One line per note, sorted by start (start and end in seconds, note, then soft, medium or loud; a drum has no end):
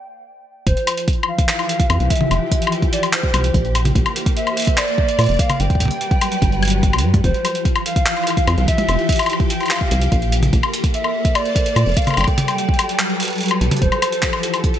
0.00 0.46 G5 loud
0.67 0.75 F1 loud
0.67 3.75 F3 medium
0.67 1.05 C5 medium
0.67 kick loud
0.67 closed hi-hat medium
0.77 closed hi-hat soft
0.87 closed hi-hat loud
0.87 high woodblock medium
0.97 closed hi-hat medium
1.07 4.49 E3 medium
1.07 kick loud
1.07 closed hi-hat medium
1.23 high woodblock medium
1.28 2.12 F5 loud
1.39 4.49 G4 medium
1.39 kick loud
1.39 closed hi-hat medium
1.49 clap loud
1.49 closed hi-hat medium
1.59 closed hi-hat soft
1.59 high woodblock medium
1.69 closed hi-hat medium
1.80 kick loud
1.80 closed hi-hat medium
1.90 1.99 F2 loud
1.90 closed hi-hat medium
1.90 high woodblock medium
2.00 2.09 C2 loud
2.00 closed hi-hat soft
2.10 2.72 E5 loud
2.10 kick loud
2.10 closed hi-hat medium
2.16 closed hi-hat medium
2.21 mid tom medium
2.31 2.40 F1 loud
2.31 closed hi-hat medium
2.31 high woodblock medium
2.51 kick loud
2.51 closed hi-hat loud
2.62 closed hi-hat medium
2.67 high woodblock medium
2.72 closed hi-hat medium
2.82 kick loud
2.82 closed hi-hat soft
2.93 3.02 D5 medium
2.93 closed hi-hat loud
3.03 closed hi-hat medium
3.03 high woodblock medium
3.13 3.71 C5 medium
3.13 clap loud
3.13 closed hi-hat medium
3.23 kick loud
3.23 closed hi-hat soft
3.34 3.51 C2 medium
3.34 closed hi-hat loud
3.34 high woodblock medium
3.44 closed hi-hat medium
3.54 3.93 A#1 loud
3.54 kick loud
3.54 closed hi-hat medium
3.65 closed hi-hat soft
3.75 5.60 A#3 medium
3.75 closed hi-hat loud
3.75 high woodblock medium
3.85 closed hi-hat medium
3.85 mid tom medium
3.95 4.04 A#1 loud
3.95 kick loud
3.95 closed hi-hat medium
4.06 closed hi-hat soft
4.06 high woodblock medium
4.11 5.60 C5 medium
4.16 closed hi-hat medium
4.26 kick loud
4.26 closed hi-hat medium
4.37 4.79 E5 loud
4.37 closed hi-hat medium
4.47 closed hi-hat soft
4.47 high woodblock soft
4.57 6.26 D5 medium
4.57 closed hi-hat medium
4.60 closed hi-hat medium
4.62 closed hi-hat medium
4.65 kick loud
4.65 closed hi-hat soft
4.67 closed hi-hat medium
4.78 5.41 D5 loud
4.78 clap loud
4.78 closed hi-hat medium
4.78 high woodblock medium
4.88 closed hi-hat soft
4.98 kick loud
5.08 closed hi-hat medium
5.19 5.27 A#2 loud
5.19 closed hi-hat medium
5.19 high woodblock medium
5.21 closed hi-hat soft
5.24 closed hi-hat soft
5.26 closed hi-hat soft
5.29 5.38 F1 loud
5.29 closed hi-hat soft
5.32 closed hi-hat soft
5.34 closed hi-hat soft
5.37 kick loud
5.37 closed hi-hat soft
5.39 5.61 F5 loud
5.39 closed hi-hat medium
5.50 closed hi-hat medium
5.50 mid tom medium
5.50 high woodblock medium
5.60 5.69 G1 loud
5.60 7.24 G3 medium
5.60 7.04 G5 loud
5.60 closed hi-hat medium
5.70 kick loud
5.70 closed hi-hat soft
5.75 kick medium
5.80 kick medium
5.80 closed hi-hat loud
5.80 mid tom soft
5.83 kick medium
5.83 mid tom soft
5.85 7.24 B4 medium
5.85 mid tom medium
5.88 closed hi-hat medium
5.88 mid tom medium
5.95 7.24 F#3 medium
6.01 closed hi-hat medium
6.11 kick loud
6.11 closed hi-hat soft
6.21 closed hi-hat medium
6.21 high woodblock medium
6.32 closed hi-hat soft
6.42 6.95 G1 loud
6.42 kick loud
6.42 closed hi-hat medium
6.52 closed hi-hat soft
6.63 closed hi-hat soft
6.63 high woodblock soft
6.65 closed hi-hat medium
6.68 closed hi-hat medium
6.70 closed hi-hat medium
6.83 kick loud
6.83 closed hi-hat medium
6.93 7.05 D2 loud
6.93 closed hi-hat soft
6.93 high woodblock medium
6.98 closed hi-hat medium
7.04 7.21 G2 medium
7.14 kick loud
7.14 closed hi-hat medium
7.14 mid tom medium
7.24 7.33 F1 loud
7.24 10.32 F3 medium
7.24 7.62 C5 loud
7.24 kick loud
7.24 closed hi-hat medium
7.34 closed hi-hat soft
7.45 closed hi-hat medium
7.45 high woodblock soft
7.55 closed hi-hat soft
7.62 11.06 E3 medium
7.62 kick loud
7.62 closed hi-hat medium
7.76 closed hi-hat soft
7.76 high woodblock medium
7.86 8.64 F5 loud
7.86 closed hi-hat medium
7.96 11.06 G4 medium
7.96 kick loud
7.96 closed hi-hat medium
8.06 clap loud
8.06 closed hi-hat medium
8.17 closed hi-hat soft
8.17 high woodblock soft
8.23 closed hi-hat medium
8.23 high woodblock soft
8.30 high woodblock soft
8.37 kick loud
8.37 closed hi-hat medium
8.47 8.56 F2 loud
8.47 closed hi-hat soft
8.47 high woodblock medium
8.58 8.66 C2 loud
8.58 closed hi-hat soft
8.68 9.26 E5 loud
8.68 kick loud
8.68 closed hi-hat medium
8.78 closed hi-hat medium
8.78 mid tom medium
8.89 8.97 F1 loud
8.89 closed hi-hat medium
8.89 high woodblock medium
8.99 closed hi-hat soft
9.09 kick loud
9.09 closed hi-hat medium
9.12 closed hi-hat medium
9.16 closed hi-hat medium
9.19 closed hi-hat medium
9.19 high woodblock medium
9.23 closed hi-hat soft
9.26 closed hi-hat soft
9.26 high woodblock medium
9.30 closed hi-hat soft
9.30 high woodblock medium
9.40 kick loud
9.40 closed hi-hat soft
9.50 9.72 G5 loud
9.50 closed hi-hat medium
9.60 closed hi-hat soft
9.60 high woodblock soft
9.63 closed hi-hat soft
9.63 high woodblock soft
9.66 high woodblock soft
9.68 clap loud
9.68 closed hi-hat medium
9.68 high woodblock soft
9.71 10.32 F5 medium
9.71 high woodblock soft
9.73 closed hi-hat soft
9.73 high woodblock soft
9.76 high woodblock soft
9.78 kick loud
9.78 closed hi-hat soft
9.78 high woodblock soft
9.91 10.09 C2 loud
9.91 closed hi-hat medium
10.02 closed hi-hat medium
10.12 10.50 A#1 loud
10.12 kick loud
10.12 closed hi-hat medium
10.22 closed hi-hat soft
10.32 12.17 A#3 medium
10.32 closed hi-hat medium
10.43 closed hi-hat medium
10.43 mid tom medium
10.53 10.62 A#1 loud
10.53 kick loud
10.53 closed hi-hat medium
10.58 14.79 A4 medium
10.63 closed hi-hat soft
10.63 high woodblock medium
10.74 closed hi-hat medium
10.84 kick loud
10.84 closed hi-hat medium
10.94 11.36 E5 medium
10.94 closed hi-hat medium
11.04 high woodblock medium
11.15 12.17 C5 medium
11.15 12.83 D5 medium
11.25 kick loud
11.25 closed hi-hat medium
11.35 11.98 D5 medium
11.35 closed hi-hat medium
11.35 high woodblock medium
11.45 closed hi-hat soft
11.56 kick loud
11.56 closed hi-hat medium
11.66 closed hi-hat medium
11.76 11.85 A#2 loud
11.76 closed hi-hat medium
11.76 high woodblock medium
11.86 11.95 F1 loud
11.86 closed hi-hat soft
11.89 closed hi-hat soft
11.92 closed hi-hat soft
11.94 12.16 F5 loud
11.94 closed hi-hat soft
11.97 kick loud
11.97 closed hi-hat medium
11.99 closed hi-hat soft
12.02 closed hi-hat soft
12.04 closed hi-hat soft
12.07 closed hi-hat medium
12.07 mid tom medium
12.07 high woodblock soft
12.10 high woodblock soft
12.14 13.82 G3 medium
12.14 13.57 G5 loud
12.14 closed hi-hat medium
12.14 high woodblock medium
12.17 12.26 G1 loud
12.17 high woodblock medium
12.21 high woodblock medium
12.24 kick loud
12.24 closed hi-hat soft
12.24 high woodblock medium
12.38 closed hi-hat medium
12.38 mid tom medium
12.47 13.82 F#3 medium
12.47 closed hi-hat medium
12.47 high woodblock medium
12.58 closed hi-hat medium
12.69 kick loud
12.74 closed hi-hat soft
12.79 closed hi-hat loud
12.79 high woodblock medium
12.89 13.82 B4 medium
12.89 closed hi-hat medium
12.99 clap loud
12.99 closed hi-hat medium
13.10 closed hi-hat soft
13.20 closed hi-hat medium
13.23 closed hi-hat medium
13.25 closed hi-hat medium
13.28 closed hi-hat soft
13.30 closed hi-hat soft
13.33 closed hi-hat soft
13.35 closed hi-hat soft
13.38 closed hi-hat soft
13.41 closed hi-hat medium
13.43 closed hi-hat soft
13.46 closed hi-hat soft
13.48 closed hi-hat soft
13.51 closed hi-hat soft
13.51 high woodblock medium
13.61 13.70 B1 loud
13.61 closed hi-hat medium
13.71 closed hi-hat medium
13.71 mid tom medium
13.77 closed hi-hat medium
13.81 13.90 F1 loud
13.81 14.79 F3 medium
13.81 14.60 C5 loud
13.81 kick loud
13.81 closed hi-hat medium
13.92 14.79 G4 medium
13.92 closed hi-hat soft
13.92 high woodblock medium
14.02 closed hi-hat loud
14.02 high woodblock medium
14.12 closed hi-hat medium
14.17 14.79 E3 medium
14.23 kick loud
14.23 clap loud
14.23 closed hi-hat medium
14.33 closed hi-hat soft
14.33 high woodblock medium
14.43 closed hi-hat loud
14.54 closed hi-hat medium
14.54 high woodblock medium
14.64 kick loud
14.64 closed hi-hat medium
14.74 closed hi-hat soft